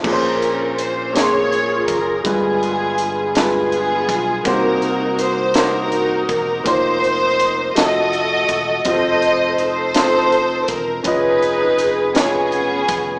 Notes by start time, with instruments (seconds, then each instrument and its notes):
0.03 fingered electric bass A#1, upright piano A#2 A#3 C#4 G#4 B4, string section C#4 F4 A#4, kick, crash
0.12 upright piano C5
0.42 closed hi-hat
0.79 string section C5, closed hi-hat
1.13 upright piano A#3 C#4 G#4 A#4, string section F4 G#4 C#5, snare, closed hi-hat
1.22 upright piano C6
1.52 closed hi-hat
1.88 fingered electric bass F#1, string section A#4, kick, closed hi-hat
2.23 fingered electric bass G1, upright piano G2 G3 G#3 F4 B4, kick, closed hi-hat
2.27 string section B3 F4 G#4
2.63 closed hi-hat
2.98 closed hi-hat
3.35 upright piano G3 G#3 F4 B4, string section B3 F4 G#4, snare, closed hi-hat
3.72 closed hi-hat
4.08 fingered electric bass B1, kick, closed hi-hat
4.45 fingered electric bass C2, upright piano C3 A#3 C#4 F#4 C5, string section D#4 F#4 A#4, kick, closed hi-hat
4.52 upright piano D#4
4.82 closed hi-hat
5.19 string section C5, closed hi-hat
5.54 upright piano A#3 D#4 F#4 C5, string section D#4 A#4, snare, closed hi-hat
5.58 string section F#4
5.92 closed hi-hat
6.29 fingered electric bass E1, string section A#4, kick, closed hi-hat
6.64 fingered electric bass F1, upright piano A#3 D#4 F4 C5, kick, closed hi-hat
6.68 string section D#4 C5
7.04 closed hi-hat
7.40 closed hi-hat
7.75 fingered electric bass F1, upright piano F3 A3 F#4 C#5, string section F#4 A4 D#5, snare, closed hi-hat
7.85 upright piano D#5
8.13 closed hi-hat
8.49 fingered electric bass E1, kick, closed hi-hat
8.85 fingered electric bass F1, upright piano C4 F4 F#4 D#5, string section A4 C5 D#5, kick, closed hi-hat
8.93 upright piano A4
9.22 closed hi-hat
9.58 string section D#4 A4 C5, closed hi-hat
9.94 upright piano C4 F4 A4 C5, snare, closed hi-hat
10.32 closed hi-hat
10.68 fingered electric bass E1, string section A#4, kick, closed hi-hat
11.04 fingered electric bass F1, upright piano C#4 F4 B4 D#5, string section D#4 G#4 B4, kick, closed hi-hat
11.42 closed hi-hat
11.78 closed hi-hat
12.14 string section B3 C#4 G#4, upright piano C#4 F4 B4 C#5, snare, closed hi-hat
12.52 closed hi-hat
12.88 fingered electric bass F1, kick, closed hi-hat